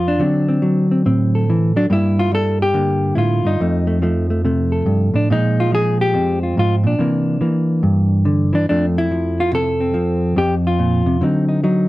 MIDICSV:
0, 0, Header, 1, 2, 480
1, 0, Start_track
1, 0, Key_signature, -1, "major"
1, 0, Tempo, 423430
1, 226, Time_signature, 4, 2, 24, 8
1, 13474, End_track
2, 0, Start_track
2, 0, Title_t, "Hollow-body jazz guitar"
2, 0, Program_c, 0, 26
2, 0, Note_on_c, 0, 41, 71
2, 0, Note_on_c, 0, 53, 68
2, 0, Note_on_c, 0, 65, 78
2, 90, Note_on_c, 0, 62, 75
2, 202, Note_off_c, 0, 53, 0
2, 221, Note_on_c, 0, 50, 71
2, 225, Note_off_c, 0, 41, 0
2, 228, Note_on_c, 0, 54, 47
2, 234, Note_on_c, 0, 60, 46
2, 242, Note_off_c, 0, 65, 0
2, 536, Note_off_c, 0, 60, 0
2, 549, Note_on_c, 0, 60, 48
2, 690, Note_off_c, 0, 54, 0
2, 704, Note_on_c, 0, 54, 54
2, 1024, Note_off_c, 0, 60, 0
2, 1036, Note_on_c, 0, 60, 43
2, 1189, Note_off_c, 0, 60, 0
2, 1198, Note_on_c, 0, 45, 59
2, 1203, Note_on_c, 0, 60, 52
2, 1531, Note_on_c, 0, 69, 42
2, 1667, Note_off_c, 0, 54, 0
2, 1697, Note_on_c, 0, 52, 66
2, 1990, Note_off_c, 0, 62, 0
2, 1994, Note_off_c, 0, 52, 0
2, 1999, Note_on_c, 0, 54, 62
2, 2005, Note_on_c, 0, 62, 88
2, 2098, Note_off_c, 0, 62, 0
2, 2126, Note_off_c, 0, 50, 0
2, 2134, Note_off_c, 0, 45, 0
2, 2137, Note_off_c, 0, 60, 0
2, 2145, Note_off_c, 0, 69, 0
2, 2151, Note_on_c, 0, 43, 68
2, 2153, Note_off_c, 0, 54, 0
2, 2157, Note_on_c, 0, 55, 55
2, 2162, Note_on_c, 0, 58, 51
2, 2184, Note_on_c, 0, 64, 107
2, 2487, Note_on_c, 0, 65, 99
2, 2615, Note_off_c, 0, 55, 0
2, 2629, Note_on_c, 0, 55, 55
2, 2643, Note_off_c, 0, 65, 0
2, 2660, Note_on_c, 0, 69, 102
2, 2957, Note_off_c, 0, 69, 0
2, 2959, Note_off_c, 0, 64, 0
2, 2974, Note_on_c, 0, 67, 108
2, 3104, Note_off_c, 0, 58, 0
2, 3106, Note_on_c, 0, 50, 66
2, 3118, Note_on_c, 0, 58, 53
2, 3575, Note_on_c, 0, 64, 62
2, 3582, Note_off_c, 0, 43, 0
2, 3587, Note_on_c, 0, 45, 67
2, 3601, Note_off_c, 0, 67, 0
2, 3606, Note_on_c, 0, 65, 78
2, 3900, Note_off_c, 0, 45, 0
2, 3908, Note_on_c, 0, 43, 56
2, 3916, Note_off_c, 0, 64, 0
2, 3929, Note_on_c, 0, 63, 79
2, 4049, Note_off_c, 0, 50, 0
2, 4051, Note_off_c, 0, 55, 0
2, 4055, Note_off_c, 0, 58, 0
2, 4075, Note_off_c, 0, 43, 0
2, 4079, Note_off_c, 0, 65, 0
2, 4083, Note_on_c, 0, 41, 72
2, 4091, Note_on_c, 0, 53, 46
2, 4093, Note_on_c, 0, 57, 49
2, 4375, Note_off_c, 0, 57, 0
2, 4389, Note_on_c, 0, 57, 46
2, 4553, Note_off_c, 0, 53, 0
2, 4555, Note_off_c, 0, 57, 0
2, 4558, Note_on_c, 0, 53, 62
2, 4568, Note_on_c, 0, 57, 50
2, 4864, Note_off_c, 0, 57, 0
2, 4877, Note_on_c, 0, 57, 44
2, 5034, Note_off_c, 0, 57, 0
2, 5040, Note_on_c, 0, 48, 55
2, 5048, Note_on_c, 0, 57, 53
2, 5351, Note_on_c, 0, 69, 44
2, 5503, Note_off_c, 0, 41, 0
2, 5508, Note_on_c, 0, 43, 65
2, 5819, Note_off_c, 0, 43, 0
2, 5823, Note_on_c, 0, 45, 53
2, 5838, Note_off_c, 0, 63, 0
2, 5844, Note_on_c, 0, 62, 70
2, 5976, Note_off_c, 0, 53, 0
2, 5977, Note_off_c, 0, 48, 0
2, 5977, Note_off_c, 0, 69, 0
2, 5981, Note_off_c, 0, 57, 0
2, 5993, Note_off_c, 0, 45, 0
2, 6004, Note_off_c, 0, 62, 0
2, 6011, Note_on_c, 0, 46, 68
2, 6022, Note_on_c, 0, 53, 48
2, 6025, Note_on_c, 0, 56, 48
2, 6035, Note_on_c, 0, 63, 98
2, 6349, Note_on_c, 0, 65, 90
2, 6467, Note_off_c, 0, 53, 0
2, 6480, Note_on_c, 0, 53, 60
2, 6496, Note_off_c, 0, 65, 0
2, 6513, Note_on_c, 0, 68, 112
2, 6805, Note_off_c, 0, 68, 0
2, 6806, Note_off_c, 0, 63, 0
2, 6816, Note_on_c, 0, 67, 101
2, 6952, Note_on_c, 0, 41, 63
2, 6963, Note_off_c, 0, 46, 0
2, 6965, Note_on_c, 0, 60, 52
2, 7281, Note_off_c, 0, 67, 0
2, 7291, Note_on_c, 0, 65, 41
2, 7433, Note_off_c, 0, 41, 0
2, 7447, Note_off_c, 0, 65, 0
2, 7452, Note_on_c, 0, 44, 66
2, 7475, Note_on_c, 0, 65, 82
2, 7649, Note_off_c, 0, 65, 0
2, 7749, Note_on_c, 0, 46, 58
2, 7754, Note_off_c, 0, 44, 0
2, 7782, Note_off_c, 0, 60, 0
2, 7786, Note_on_c, 0, 62, 67
2, 7897, Note_off_c, 0, 53, 0
2, 7916, Note_off_c, 0, 46, 0
2, 7920, Note_on_c, 0, 48, 63
2, 7929, Note_off_c, 0, 56, 0
2, 7935, Note_on_c, 0, 52, 50
2, 7943, Note_on_c, 0, 58, 53
2, 8394, Note_off_c, 0, 52, 0
2, 8395, Note_off_c, 0, 58, 0
2, 8397, Note_off_c, 0, 48, 0
2, 8398, Note_on_c, 0, 52, 55
2, 8409, Note_on_c, 0, 58, 44
2, 8875, Note_on_c, 0, 43, 60
2, 9355, Note_on_c, 0, 50, 60
2, 9663, Note_off_c, 0, 52, 0
2, 9665, Note_off_c, 0, 50, 0
2, 9668, Note_on_c, 0, 52, 60
2, 9678, Note_off_c, 0, 62, 0
2, 9692, Note_on_c, 0, 62, 80
2, 9814, Note_off_c, 0, 43, 0
2, 9820, Note_off_c, 0, 58, 0
2, 9835, Note_off_c, 0, 52, 0
2, 9840, Note_off_c, 0, 62, 0
2, 9853, Note_on_c, 0, 62, 92
2, 9859, Note_on_c, 0, 41, 72
2, 9867, Note_on_c, 0, 53, 48
2, 9870, Note_on_c, 0, 57, 48
2, 10034, Note_off_c, 0, 62, 0
2, 10182, Note_on_c, 0, 64, 93
2, 10314, Note_off_c, 0, 53, 0
2, 10328, Note_on_c, 0, 53, 62
2, 10658, Note_on_c, 0, 65, 96
2, 10795, Note_on_c, 0, 48, 61
2, 10805, Note_off_c, 0, 65, 0
2, 10823, Note_on_c, 0, 69, 108
2, 11109, Note_off_c, 0, 64, 0
2, 11113, Note_on_c, 0, 60, 44
2, 11252, Note_off_c, 0, 53, 0
2, 11266, Note_on_c, 0, 53, 63
2, 11272, Note_off_c, 0, 48, 0
2, 11727, Note_off_c, 0, 53, 0
2, 11735, Note_off_c, 0, 41, 0
2, 11748, Note_on_c, 0, 41, 78
2, 11762, Note_off_c, 0, 69, 0
2, 11767, Note_on_c, 0, 67, 99
2, 11801, Note_off_c, 0, 57, 0
2, 11948, Note_off_c, 0, 67, 0
2, 12094, Note_on_c, 0, 65, 77
2, 12232, Note_on_c, 0, 46, 60
2, 12536, Note_off_c, 0, 46, 0
2, 12541, Note_on_c, 0, 48, 65
2, 12705, Note_off_c, 0, 48, 0
2, 12706, Note_off_c, 0, 41, 0
2, 12709, Note_on_c, 0, 50, 67
2, 12713, Note_off_c, 0, 60, 0
2, 12717, Note_on_c, 0, 54, 44
2, 12724, Note_off_c, 0, 65, 0
2, 12729, Note_on_c, 0, 60, 45
2, 12738, Note_on_c, 0, 63, 49
2, 13007, Note_off_c, 0, 63, 0
2, 13020, Note_on_c, 0, 63, 41
2, 13176, Note_off_c, 0, 54, 0
2, 13182, Note_off_c, 0, 63, 0
2, 13190, Note_on_c, 0, 54, 66
2, 13195, Note_on_c, 0, 63, 53
2, 13474, Note_off_c, 0, 50, 0
2, 13474, Note_off_c, 0, 54, 0
2, 13474, Note_off_c, 0, 60, 0
2, 13474, Note_off_c, 0, 63, 0
2, 13474, End_track
0, 0, End_of_file